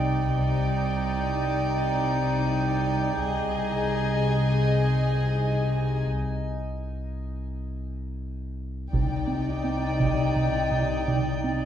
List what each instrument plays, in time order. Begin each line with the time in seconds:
Already playing: sub bass C2, double bass section C2, cello section C3, synth texture D#4 D5 G5, violin section D#4 D5
0.33 sub bass C2, double bass section C2, cello section C3, synth texture D#4 D5 G5, violin section D#4 D5
3.20 sub bass C2, double bass section C2, cello section C3, synth texture D#4 D#5 G#5, violin section G#4 D#5
6.07 sub bass C2
8.92 double bass section C2, sub bass C2, cello section C3, analog synth bass C3, synth texture D#4 D5 G5, viola section D#4, violin section D5 G5, taiko
9.27 analog synth bass C4
9.64 analog synth bass C4
10.00 analog synth bass C3, taiko
10.36 analog synth bass C3
10.71 analog synth bass C3
11.08 analog synth bass C3
11.44 analog synth bass C4